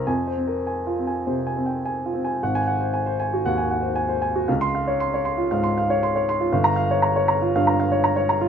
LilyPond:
<<
  \new Staff \with { instrumentName = "Upright piano" } { \time 4/4 \key aes \major \tempo 4 = 116 << { aes''8 r2. r8 | r16 aes''8 r2. r16 | r16 c'''8 r2. r16 | r16 bes''8 r2. r16 | } \\ { \tuplet 3/2 { r8 c''8 bes'8 aes''8 f'8 aes''8 c''8 aes''8 g''8 aes''8 f'8 aes''8 } | ges''8 ges''16 c''16 aes''16 c''16 aes''16 ges'16 ges''16 aes''16 ges''16 c''16 aes''16 c''16 aes''16 ges'16 | f''8 f''16 des''16 c'''16 des''16 c'''16 f'16 f''16 c'''16 f''16 des''16 c'''16 des''16 c'''16 f'16 | f''8 f''16 des''16 bes''16 des''16 bes''16 f'16 f''16 bes''16 f''16 des''16 bes''16 des''16 bes''16 f'16 | } >> }
  \new Staff \with { instrumentName = "Upright piano" } { \clef bass \time 4/4 \key aes \major f,8 c'8 r8 c'8 c8 c'8 r8 c'8 | aes,,2 ees,8 r4. | des,2 aes,8 r4. | g,,2 g,8 r4. | }
>>